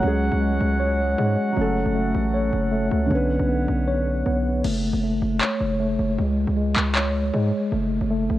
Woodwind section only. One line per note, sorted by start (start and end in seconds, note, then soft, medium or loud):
0.00 3.07 C#4 medium
0.00 3.07 F#4 medium
0.00 1.40 G#4 medium
0.00 4.60 F#5 medium
1.57 3.09 A4 medium
3.11 4.63 D3 medium
3.11 4.63 B4 medium
3.11 4.63 C#5 medium